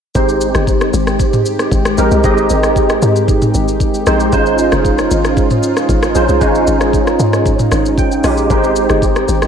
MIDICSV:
0, 0, Header, 1, 5, 480
1, 0, Start_track
1, 0, Key_signature, -4, "major"
1, 0, Tempo, 521739
1, 140, Time_signature, 4, 2, 24, 8
1, 8716, End_track
2, 0, Start_track
2, 0, Title_t, "Analog synth pad"
2, 0, Program_c, 0, 89
2, 142, Note_on_c, 0, 56, 85
2, 142, Note_on_c, 0, 63, 73
2, 142, Note_on_c, 0, 67, 95
2, 3944, Note_off_c, 0, 56, 0
2, 3944, Note_off_c, 0, 67, 0
2, 3983, Note_on_c, 0, 61, 76
2, 3983, Note_on_c, 0, 65, 90
2, 7785, Note_off_c, 0, 61, 0
2, 7785, Note_off_c, 0, 65, 0
2, 7817, Note_on_c, 0, 67, 89
2, 7818, Note_on_c, 0, 56, 85
2, 8716, Note_off_c, 0, 56, 0
2, 8716, Note_off_c, 0, 63, 0
2, 8716, Note_off_c, 0, 67, 0
2, 8716, End_track
3, 0, Start_track
3, 0, Title_t, "Tine electric piano"
3, 0, Program_c, 1, 4
3, 135, Note_on_c, 1, 56, 83
3, 137, Note_on_c, 1, 60, 81
3, 140, Note_on_c, 1, 63, 78
3, 143, Note_on_c, 1, 67, 78
3, 145, Note_on_c, 1, 72, 89
3, 334, Control_c, 1, 64, 127
3, 907, Note_off_c, 1, 56, 0
3, 909, Note_off_c, 1, 60, 0
3, 910, Note_off_c, 1, 63, 0
3, 911, Note_off_c, 1, 67, 0
3, 913, Note_off_c, 1, 72, 0
3, 1814, Note_on_c, 1, 56, 84
3, 1817, Note_on_c, 1, 60, 83
3, 1819, Note_on_c, 1, 63, 82
3, 1821, Note_on_c, 1, 67, 79
3, 1825, Note_on_c, 1, 70, 97
3, 2011, Note_off_c, 1, 56, 0
3, 2012, Note_off_c, 1, 60, 0
3, 2013, Note_off_c, 1, 63, 0
3, 2015, Note_off_c, 1, 67, 0
3, 2016, Note_off_c, 1, 70, 0
3, 2055, Note_on_c, 1, 56, 87
3, 2058, Note_on_c, 1, 60, 76
3, 2061, Note_on_c, 1, 63, 75
3, 2064, Note_on_c, 1, 67, 77
3, 2065, Note_on_c, 1, 75, 96
3, 2828, Note_off_c, 1, 56, 0
3, 2829, Note_off_c, 1, 60, 0
3, 2830, Note_off_c, 1, 63, 0
3, 2832, Note_off_c, 1, 67, 0
3, 2832, Note_off_c, 1, 75, 0
3, 3738, Note_on_c, 1, 56, 88
3, 3741, Note_on_c, 1, 60, 80
3, 3743, Note_on_c, 1, 63, 78
3, 3746, Note_on_c, 1, 67, 77
3, 3748, Note_on_c, 1, 72, 98
3, 3933, Note_off_c, 1, 56, 0
3, 3934, Note_off_c, 1, 60, 0
3, 3935, Note_off_c, 1, 63, 0
3, 3937, Note_off_c, 1, 67, 0
3, 3938, Note_off_c, 1, 72, 0
3, 3976, Note_on_c, 1, 56, 85
3, 3979, Note_on_c, 1, 61, 82
3, 3981, Note_on_c, 1, 63, 78
3, 3983, Note_on_c, 1, 65, 83
3, 3986, Note_on_c, 1, 72, 94
3, 3994, Control_c, 1, 64, 0
3, 4154, Control_c, 1, 64, 127
3, 4748, Note_off_c, 1, 56, 0
3, 4749, Note_off_c, 1, 61, 0
3, 4750, Note_off_c, 1, 63, 0
3, 4751, Note_off_c, 1, 65, 0
3, 4753, Note_off_c, 1, 72, 0
3, 5657, Note_on_c, 1, 56, 86
3, 5660, Note_on_c, 1, 61, 80
3, 5663, Note_on_c, 1, 63, 81
3, 5665, Note_on_c, 1, 65, 81
3, 5668, Note_on_c, 1, 72, 93
3, 5852, Note_off_c, 1, 56, 0
3, 5854, Note_off_c, 1, 61, 0
3, 5855, Note_off_c, 1, 63, 0
3, 5856, Note_off_c, 1, 65, 0
3, 5858, Note_off_c, 1, 72, 0
3, 5894, Note_on_c, 1, 56, 83
3, 5898, Note_on_c, 1, 61, 78
3, 5901, Note_on_c, 1, 63, 78
3, 5902, Note_on_c, 1, 65, 77
3, 5905, Note_on_c, 1, 73, 92
3, 6667, Note_off_c, 1, 56, 0
3, 6669, Note_off_c, 1, 61, 0
3, 6670, Note_off_c, 1, 63, 0
3, 6671, Note_off_c, 1, 65, 0
3, 6672, Note_off_c, 1, 73, 0
3, 7342, Note_on_c, 1, 79, 79
3, 7564, Note_off_c, 1, 79, 0
3, 7578, Note_on_c, 1, 56, 86
3, 7580, Note_on_c, 1, 61, 80
3, 7582, Note_on_c, 1, 63, 77
3, 7583, Note_on_c, 1, 80, 77
3, 7585, Note_on_c, 1, 65, 80
3, 7588, Note_on_c, 1, 67, 96
3, 7773, Note_off_c, 1, 56, 0
3, 7774, Note_off_c, 1, 61, 0
3, 7775, Note_off_c, 1, 63, 0
3, 7776, Note_off_c, 1, 65, 0
3, 7778, Note_off_c, 1, 67, 0
3, 7805, Note_off_c, 1, 80, 0
3, 7818, Note_on_c, 1, 56, 81
3, 7821, Note_on_c, 1, 60, 76
3, 7823, Note_on_c, 1, 63, 75
3, 7826, Note_on_c, 1, 67, 76
3, 7829, Note_on_c, 1, 70, 75
3, 7832, Control_c, 1, 64, 0
3, 7884, Note_off_c, 1, 70, 0
3, 7887, Note_on_c, 1, 72, 92
3, 7967, Control_c, 1, 64, 127
3, 8589, Note_off_c, 1, 56, 0
3, 8590, Note_off_c, 1, 60, 0
3, 8592, Note_off_c, 1, 63, 0
3, 8593, Note_off_c, 1, 67, 0
3, 8623, Note_off_c, 1, 72, 0
3, 8716, End_track
4, 0, Start_track
4, 0, Title_t, "Log drum bass"
4, 0, Program_c, 2, 39
4, 140, Note_on_c, 2, 32, 110
4, 489, Note_off_c, 2, 32, 0
4, 504, Note_on_c, 2, 31, 89
4, 844, Note_off_c, 2, 31, 0
4, 859, Note_on_c, 2, 32, 112
4, 1089, Note_off_c, 2, 32, 0
4, 1578, Note_on_c, 2, 32, 96
4, 1808, Note_off_c, 2, 32, 0
4, 1820, Note_on_c, 2, 34, 95
4, 1939, Note_off_c, 2, 34, 0
4, 1944, Note_on_c, 2, 36, 102
4, 2054, Note_off_c, 2, 36, 0
4, 2061, Note_on_c, 2, 32, 114
4, 2290, Note_off_c, 2, 32, 0
4, 2301, Note_on_c, 2, 32, 93
4, 2759, Note_off_c, 2, 32, 0
4, 2781, Note_on_c, 2, 44, 107
4, 3129, Note_off_c, 2, 44, 0
4, 3261, Note_on_c, 2, 32, 89
4, 3719, Note_off_c, 2, 32, 0
4, 3741, Note_on_c, 2, 34, 95
4, 3970, Note_off_c, 2, 34, 0
4, 3980, Note_on_c, 2, 32, 110
4, 4329, Note_off_c, 2, 32, 0
4, 4346, Note_on_c, 2, 29, 92
4, 4685, Note_off_c, 2, 29, 0
4, 4701, Note_on_c, 2, 32, 107
4, 4930, Note_off_c, 2, 32, 0
4, 5419, Note_on_c, 2, 32, 97
4, 5649, Note_off_c, 2, 32, 0
4, 5659, Note_on_c, 2, 34, 100
4, 5779, Note_off_c, 2, 34, 0
4, 5785, Note_on_c, 2, 36, 89
4, 5895, Note_off_c, 2, 36, 0
4, 5900, Note_on_c, 2, 32, 109
4, 6130, Note_off_c, 2, 32, 0
4, 6139, Note_on_c, 2, 32, 104
4, 6598, Note_off_c, 2, 32, 0
4, 6619, Note_on_c, 2, 44, 104
4, 6968, Note_off_c, 2, 44, 0
4, 7100, Note_on_c, 2, 32, 95
4, 7559, Note_off_c, 2, 32, 0
4, 7579, Note_on_c, 2, 34, 100
4, 7809, Note_off_c, 2, 34, 0
4, 7821, Note_on_c, 2, 32, 108
4, 8169, Note_off_c, 2, 32, 0
4, 8185, Note_on_c, 2, 31, 92
4, 8525, Note_off_c, 2, 31, 0
4, 8541, Note_on_c, 2, 32, 102
4, 8716, Note_off_c, 2, 32, 0
4, 8716, End_track
5, 0, Start_track
5, 0, Title_t, "Drums"
5, 139, Note_on_c, 9, 82, 79
5, 140, Note_on_c, 9, 36, 104
5, 231, Note_off_c, 9, 82, 0
5, 232, Note_off_c, 9, 36, 0
5, 265, Note_on_c, 9, 82, 54
5, 357, Note_off_c, 9, 82, 0
5, 379, Note_on_c, 9, 82, 99
5, 471, Note_off_c, 9, 82, 0
5, 503, Note_on_c, 9, 37, 91
5, 503, Note_on_c, 9, 82, 57
5, 595, Note_off_c, 9, 37, 0
5, 595, Note_off_c, 9, 82, 0
5, 619, Note_on_c, 9, 36, 92
5, 623, Note_on_c, 9, 82, 77
5, 711, Note_off_c, 9, 36, 0
5, 715, Note_off_c, 9, 82, 0
5, 745, Note_on_c, 9, 82, 45
5, 748, Note_on_c, 9, 37, 91
5, 837, Note_off_c, 9, 82, 0
5, 840, Note_off_c, 9, 37, 0
5, 862, Note_on_c, 9, 82, 100
5, 954, Note_off_c, 9, 82, 0
5, 986, Note_on_c, 9, 37, 90
5, 987, Note_on_c, 9, 82, 52
5, 1078, Note_off_c, 9, 37, 0
5, 1079, Note_off_c, 9, 82, 0
5, 1099, Note_on_c, 9, 36, 114
5, 1101, Note_on_c, 9, 82, 83
5, 1191, Note_off_c, 9, 36, 0
5, 1193, Note_off_c, 9, 82, 0
5, 1225, Note_on_c, 9, 82, 61
5, 1226, Note_on_c, 9, 45, 87
5, 1317, Note_off_c, 9, 82, 0
5, 1318, Note_off_c, 9, 45, 0
5, 1341, Note_on_c, 9, 82, 94
5, 1433, Note_off_c, 9, 82, 0
5, 1466, Note_on_c, 9, 37, 94
5, 1467, Note_on_c, 9, 82, 59
5, 1558, Note_off_c, 9, 37, 0
5, 1559, Note_off_c, 9, 82, 0
5, 1578, Note_on_c, 9, 36, 96
5, 1582, Note_on_c, 9, 82, 80
5, 1670, Note_off_c, 9, 36, 0
5, 1674, Note_off_c, 9, 82, 0
5, 1706, Note_on_c, 9, 37, 102
5, 1708, Note_on_c, 9, 82, 54
5, 1798, Note_off_c, 9, 37, 0
5, 1800, Note_off_c, 9, 82, 0
5, 1821, Note_on_c, 9, 82, 89
5, 1913, Note_off_c, 9, 82, 0
5, 1943, Note_on_c, 9, 82, 58
5, 2035, Note_off_c, 9, 82, 0
5, 2060, Note_on_c, 9, 82, 76
5, 2061, Note_on_c, 9, 36, 108
5, 2152, Note_off_c, 9, 82, 0
5, 2153, Note_off_c, 9, 36, 0
5, 2185, Note_on_c, 9, 82, 53
5, 2277, Note_off_c, 9, 82, 0
5, 2298, Note_on_c, 9, 82, 95
5, 2390, Note_off_c, 9, 82, 0
5, 2423, Note_on_c, 9, 37, 93
5, 2423, Note_on_c, 9, 82, 57
5, 2515, Note_off_c, 9, 37, 0
5, 2515, Note_off_c, 9, 82, 0
5, 2539, Note_on_c, 9, 36, 89
5, 2543, Note_on_c, 9, 82, 78
5, 2631, Note_off_c, 9, 36, 0
5, 2635, Note_off_c, 9, 82, 0
5, 2663, Note_on_c, 9, 82, 47
5, 2666, Note_on_c, 9, 37, 89
5, 2755, Note_off_c, 9, 82, 0
5, 2758, Note_off_c, 9, 37, 0
5, 2780, Note_on_c, 9, 82, 95
5, 2872, Note_off_c, 9, 82, 0
5, 2907, Note_on_c, 9, 82, 53
5, 2999, Note_off_c, 9, 82, 0
5, 3020, Note_on_c, 9, 36, 116
5, 3022, Note_on_c, 9, 82, 78
5, 3112, Note_off_c, 9, 36, 0
5, 3114, Note_off_c, 9, 82, 0
5, 3145, Note_on_c, 9, 82, 60
5, 3146, Note_on_c, 9, 45, 93
5, 3237, Note_off_c, 9, 82, 0
5, 3238, Note_off_c, 9, 45, 0
5, 3261, Note_on_c, 9, 82, 95
5, 3353, Note_off_c, 9, 82, 0
5, 3387, Note_on_c, 9, 82, 59
5, 3479, Note_off_c, 9, 82, 0
5, 3498, Note_on_c, 9, 36, 92
5, 3501, Note_on_c, 9, 82, 77
5, 3590, Note_off_c, 9, 36, 0
5, 3593, Note_off_c, 9, 82, 0
5, 3627, Note_on_c, 9, 82, 54
5, 3719, Note_off_c, 9, 82, 0
5, 3741, Note_on_c, 9, 82, 89
5, 3742, Note_on_c, 9, 37, 96
5, 3833, Note_off_c, 9, 82, 0
5, 3834, Note_off_c, 9, 37, 0
5, 3863, Note_on_c, 9, 82, 56
5, 3955, Note_off_c, 9, 82, 0
5, 3980, Note_on_c, 9, 36, 106
5, 3980, Note_on_c, 9, 82, 80
5, 4072, Note_off_c, 9, 36, 0
5, 4072, Note_off_c, 9, 82, 0
5, 4105, Note_on_c, 9, 82, 52
5, 4197, Note_off_c, 9, 82, 0
5, 4218, Note_on_c, 9, 82, 96
5, 4310, Note_off_c, 9, 82, 0
5, 4343, Note_on_c, 9, 37, 97
5, 4343, Note_on_c, 9, 82, 56
5, 4435, Note_off_c, 9, 37, 0
5, 4435, Note_off_c, 9, 82, 0
5, 4459, Note_on_c, 9, 36, 90
5, 4463, Note_on_c, 9, 82, 76
5, 4551, Note_off_c, 9, 36, 0
5, 4555, Note_off_c, 9, 82, 0
5, 4586, Note_on_c, 9, 82, 46
5, 4588, Note_on_c, 9, 37, 88
5, 4678, Note_off_c, 9, 82, 0
5, 4680, Note_off_c, 9, 37, 0
5, 4702, Note_on_c, 9, 82, 99
5, 4794, Note_off_c, 9, 82, 0
5, 4827, Note_on_c, 9, 37, 94
5, 4828, Note_on_c, 9, 82, 52
5, 4919, Note_off_c, 9, 37, 0
5, 4920, Note_off_c, 9, 82, 0
5, 4940, Note_on_c, 9, 36, 120
5, 4942, Note_on_c, 9, 82, 79
5, 5032, Note_off_c, 9, 36, 0
5, 5034, Note_off_c, 9, 82, 0
5, 5065, Note_on_c, 9, 82, 60
5, 5066, Note_on_c, 9, 45, 89
5, 5157, Note_off_c, 9, 82, 0
5, 5158, Note_off_c, 9, 45, 0
5, 5181, Note_on_c, 9, 82, 101
5, 5273, Note_off_c, 9, 82, 0
5, 5306, Note_on_c, 9, 37, 95
5, 5307, Note_on_c, 9, 82, 61
5, 5398, Note_off_c, 9, 37, 0
5, 5399, Note_off_c, 9, 82, 0
5, 5418, Note_on_c, 9, 36, 92
5, 5421, Note_on_c, 9, 82, 83
5, 5510, Note_off_c, 9, 36, 0
5, 5513, Note_off_c, 9, 82, 0
5, 5544, Note_on_c, 9, 37, 106
5, 5546, Note_on_c, 9, 82, 55
5, 5636, Note_off_c, 9, 37, 0
5, 5638, Note_off_c, 9, 82, 0
5, 5660, Note_on_c, 9, 82, 89
5, 5752, Note_off_c, 9, 82, 0
5, 5783, Note_on_c, 9, 82, 56
5, 5875, Note_off_c, 9, 82, 0
5, 5900, Note_on_c, 9, 82, 78
5, 5901, Note_on_c, 9, 36, 104
5, 5992, Note_off_c, 9, 82, 0
5, 5993, Note_off_c, 9, 36, 0
5, 6025, Note_on_c, 9, 82, 53
5, 6117, Note_off_c, 9, 82, 0
5, 6140, Note_on_c, 9, 82, 97
5, 6232, Note_off_c, 9, 82, 0
5, 6264, Note_on_c, 9, 37, 90
5, 6264, Note_on_c, 9, 82, 59
5, 6356, Note_off_c, 9, 37, 0
5, 6356, Note_off_c, 9, 82, 0
5, 6379, Note_on_c, 9, 36, 90
5, 6383, Note_on_c, 9, 82, 76
5, 6471, Note_off_c, 9, 36, 0
5, 6475, Note_off_c, 9, 82, 0
5, 6505, Note_on_c, 9, 82, 44
5, 6507, Note_on_c, 9, 37, 91
5, 6597, Note_off_c, 9, 82, 0
5, 6599, Note_off_c, 9, 37, 0
5, 6621, Note_on_c, 9, 82, 99
5, 6713, Note_off_c, 9, 82, 0
5, 6746, Note_on_c, 9, 37, 89
5, 6747, Note_on_c, 9, 82, 49
5, 6838, Note_off_c, 9, 37, 0
5, 6839, Note_off_c, 9, 82, 0
5, 6860, Note_on_c, 9, 36, 112
5, 6862, Note_on_c, 9, 82, 79
5, 6952, Note_off_c, 9, 36, 0
5, 6954, Note_off_c, 9, 82, 0
5, 6985, Note_on_c, 9, 82, 62
5, 6986, Note_on_c, 9, 45, 91
5, 7077, Note_off_c, 9, 82, 0
5, 7078, Note_off_c, 9, 45, 0
5, 7099, Note_on_c, 9, 37, 99
5, 7101, Note_on_c, 9, 82, 97
5, 7191, Note_off_c, 9, 37, 0
5, 7193, Note_off_c, 9, 82, 0
5, 7228, Note_on_c, 9, 82, 59
5, 7320, Note_off_c, 9, 82, 0
5, 7338, Note_on_c, 9, 36, 96
5, 7342, Note_on_c, 9, 82, 78
5, 7430, Note_off_c, 9, 36, 0
5, 7434, Note_off_c, 9, 82, 0
5, 7467, Note_on_c, 9, 82, 53
5, 7559, Note_off_c, 9, 82, 0
5, 7581, Note_on_c, 9, 46, 70
5, 7581, Note_on_c, 9, 82, 86
5, 7582, Note_on_c, 9, 37, 90
5, 7673, Note_off_c, 9, 46, 0
5, 7673, Note_off_c, 9, 82, 0
5, 7674, Note_off_c, 9, 37, 0
5, 7704, Note_on_c, 9, 82, 56
5, 7796, Note_off_c, 9, 82, 0
5, 7821, Note_on_c, 9, 36, 105
5, 7821, Note_on_c, 9, 82, 75
5, 7913, Note_off_c, 9, 36, 0
5, 7913, Note_off_c, 9, 82, 0
5, 7946, Note_on_c, 9, 82, 55
5, 8038, Note_off_c, 9, 82, 0
5, 8060, Note_on_c, 9, 82, 97
5, 8152, Note_off_c, 9, 82, 0
5, 8184, Note_on_c, 9, 37, 94
5, 8184, Note_on_c, 9, 82, 57
5, 8276, Note_off_c, 9, 37, 0
5, 8276, Note_off_c, 9, 82, 0
5, 8300, Note_on_c, 9, 36, 89
5, 8304, Note_on_c, 9, 82, 81
5, 8392, Note_off_c, 9, 36, 0
5, 8396, Note_off_c, 9, 82, 0
5, 8426, Note_on_c, 9, 82, 45
5, 8428, Note_on_c, 9, 37, 91
5, 8518, Note_off_c, 9, 82, 0
5, 8520, Note_off_c, 9, 37, 0
5, 8542, Note_on_c, 9, 82, 102
5, 8634, Note_off_c, 9, 82, 0
5, 8668, Note_on_c, 9, 37, 91
5, 8668, Note_on_c, 9, 82, 51
5, 8716, Note_off_c, 9, 37, 0
5, 8716, Note_off_c, 9, 82, 0
5, 8716, End_track
0, 0, End_of_file